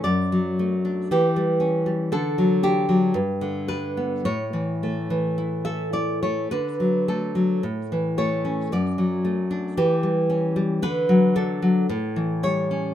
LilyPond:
\new Staff \with { instrumentName = "Nylon-string guitar" } { \time 2/4 \key d \major \tempo 4 = 56 << { d''4 g'4 | a'8 g'4 b'8 | cis''4~ cis''16 e''16 d''16 cis''16 | b'8 a'4 cis''8 |
d''4 g'4 | b'8 a'4 cis''8 | } \\ { fis,16 fis16 a16 d'16 e16 g16 cis'16 g16 | d16 fis16 d'16 fis16 g,16 d16 g16 b16 | a,16 e16 a16 e16 e'16 a'16 e'16 a16 | d16 fis16 a16 fis16 a,16 e16 a16 cis'16 |
fis,16 fis16 a16 d'16 e16 g16 cis'16 g16 | d16 fis16 d'16 fis16 a,16 e16 g16 cis'16 | } >> }